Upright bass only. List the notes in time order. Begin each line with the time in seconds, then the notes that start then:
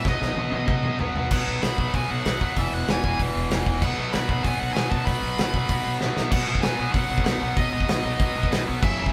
0.05 B1
0.21 B1
0.35 B1
0.52 B1
0.68 B1
0.83 B1
0.99 B1
1.15 B1
1.31 B1
1.47 B1
1.62 B1
1.78 B1
1.93 B1
2.10 B1
2.25 B1
2.41 D#2
2.56 E1
2.72 E1
2.88 E1
3.03 E1
3.19 E1
3.36 E1
3.50 E1
3.67 E1
3.83 B1
3.97 B1
4.14 B1
4.30 B1
4.45 B1
4.61 B1
4.75 B1
4.91 B1
5.08 B1
5.22 B1
5.37 B1
5.54 B1
5.69 B1
5.85 B1
6.01 B1
6.16 B1
6.32 B1
6.47 B1
6.63 B1
6.79 B1
6.95 B1
7.09 B1
7.24 B1
7.41 B1
7.56 B1
7.72 B1
7.88 B1
8.04 B1
8.20 B1
8.35 B1
8.53 B1
8.69 B1
8.83 F#1
9.00 F#1